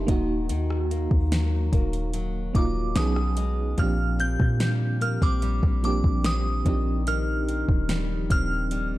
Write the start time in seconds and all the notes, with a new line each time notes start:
Already playing: F2 D#3 F3 A3 D4
0.07 D#1 D#3 A#3 D#4, kick, closed hi-hat
0.11 F#4
0.49 D#2 D#3, closed hi-hat
0.70 cross-stick
0.91 A#3, closed hi-hat
1.11 D#2, kick
1.32 F#3, snare, closed hi-hat
1.73 D#1 A#3, kick, closed hi-hat
1.93 closed hi-hat
2.14 F#3, closed hi-hat
2.54 D#1 A#3 D#4 D6, kick, closed hi-hat
2.58 F4
2.95 B1 B2 F#3 B3 C#4 D#4 D#6, snare, closed hi-hat
2.99 G#4
3.16 cross-stick
3.37 G#3, closed hi-hat
3.77 A#1 A#2 F3 A#3 C4 D4 F6, kick, closed hi-hat
3.82 G4
4.19 C4 G6, closed hi-hat
4.40 A#2, kick
4.60 G3, snare, closed hi-hat
5.01 A#3 F6, closed hi-hat
5.22 A#1 C4 D6, kick
5.42 G3, closed hi-hat
5.63 A#1, kick
5.83 F3 A#3 C4 D4 D6, closed hi-hat
5.87 G4
6.04 A#1, kick
6.24 C4 D#6, snare, closed hi-hat
6.65 A#1 D#3 F3 C4 D4 D#4, kick, closed hi-hat
6.69 G4
7.07 D#3 F6, closed hi-hat
7.48 C4, closed hi-hat
7.68 D#1, kick
7.89 G3, snare, closed hi-hat
8.30 D#1 C4 F6, kick, closed hi-hat
8.71 G3, closed hi-hat